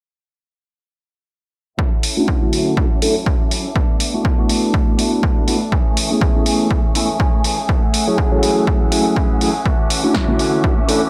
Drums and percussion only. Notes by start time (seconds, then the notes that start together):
1.79 kick
2.03 open hi-hat
2.28 kick
2.53 open hi-hat
2.77 kick
3.02 open hi-hat
3.26 kick
3.51 open hi-hat
3.76 kick
4.00 open hi-hat
4.25 kick
4.49 open hi-hat
4.74 kick
4.99 open hi-hat
5.23 kick
5.48 open hi-hat
5.72 kick
5.97 open hi-hat
6.21 kick
6.46 open hi-hat
6.71 kick
6.95 open hi-hat
7.20 kick
7.44 open hi-hat
7.69 kick
7.94 open hi-hat
8.18 kick
8.43 open hi-hat
8.67 kick
8.92 open hi-hat
9.16 kick
9.41 open hi-hat
9.66 kick
9.90 open hi-hat, tambourine
10.15 kick, snare
10.28 tambourine, high conga
10.39 open hi-hat, tambourine
10.54 tambourine
10.64 kick
10.78 tambourine, high conga
10.89 open hi-hat, tambourine